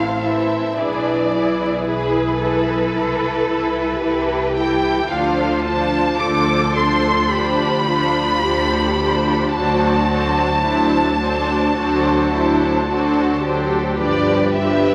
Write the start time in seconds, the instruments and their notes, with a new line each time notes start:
Already playing: double bass section A1, viola section E3 E4, cello section C4, violin section A4 C5 F5
0.22 viola section E3 E4, violin section A4 C5 E5
0.76 double bass section B1, viola section E3 E4, cello section D4, violin section G#4 B4 D5
1.30 viola section E3 E4, cello section E4, violin section G#4 B4
1.86 double bass section B1, viola section E3 E4, cello section G#4, violin section G#4 B4
2.40 viola section E3 E4, violin section G#4 B4, cello section A4
2.93 double bass section C2, viola section E3 E4, violin section A4
3.48 viola section E3 E4, violin section A4
4.01 double bass section C2, viola section E3 E4, cello section G4, violin section A4
4.56 viola section E3 E4, violin section A4 G5
5.09 double bass section D2, viola section F3 D4, cello section F4, violin section A4 C5 F5
5.64 viola section F3 D4, violin section A4 C5 A5
6.18 double bass section D2, viola section F3 D4, cello section A4, violin section C5 D6
6.22 violin section A4
6.74 viola section F3 D4, violin section A4 C5 C6
7.29 double bass section D2, viola section F3, cello section G4, violin section C5 B5
7.33 viola section D4, violin section A4
7.85 viola section F3 D4, cello section F4, violin section A4 C5
8.41 double bass section D2, viola section F3 D4, cello section G4, violin section A4 C5
8.99 viola section F3 D4, violin section A4 C5
9.52 double bass section D2, viola section F#3 D4, cello section F#4, violin section A4 C5 A5
10.08 viola section F#3 D4, violin section A4 C5
10.63 double bass section D2, viola section F#3 D4, cello section E4, violin section A4 C5
11.19 viola section F#3 D4, cello section D4, violin section A4 C5
11.75 double bass section D2, viola section F#3 D4, cello section F#4, violin section A4 C5
12.32 viola section F#3 D4, cello section E4, violin section A4 C5
12.87 double bass section D2, viola section F#3 D4, cello section F#4, violin section A4 C5
13.42 viola section F#3 D4, cello section G4, violin section A4 C5
13.99 double bass section G1, viola section F3 D4, violin section G4 B4 D5
14.55 viola section F3 D4, violin section G4 B4 E5